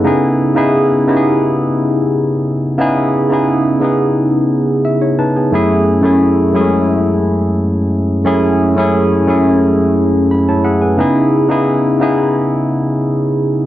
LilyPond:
\new Staff \with { instrumentName = "Tine electric piano" } { \time 4/4 \key fis \dorian \tempo 4 = 88 << { <cis' a'>16 r2. r8. | r2. e''16 <e' cis''>16 <dis' b' a''>16 <b gis'>16~ | <b gis'>16 r2. r8. | r2. b''16 <e' cis'' a''>16 <gis' e'' fis''>16 <b' gis''>16~ |
<b' gis''>16 r2. r8. | } \\ { <cis b dis' e' gis'>8 r16 <cis b dis' e' gis'>8 r16 <cis b dis' e' g' gis'>4. r4 | <cis b dis' e' gis'>8 r16 <cis b dis' e' gis'>8 r16 <cis b dis' e' gis'>4. r4 | <fis, a cis' e' gis'>8 r16 <fis, a cis' e' gis'>8 r16 <fis, gis a cis' e' gis'>4. r4 | <fis, a cis' e' gis'>8 r16 <fis, a cis' e' gis'>8 r16 <fis, a cis' e' gis'>4. r4 |
<cis b dis' e' gis'>8 r16 <cis b dis' e' gis'>8 r16 <cis b dis' e' gis'>4. r4 | } >> }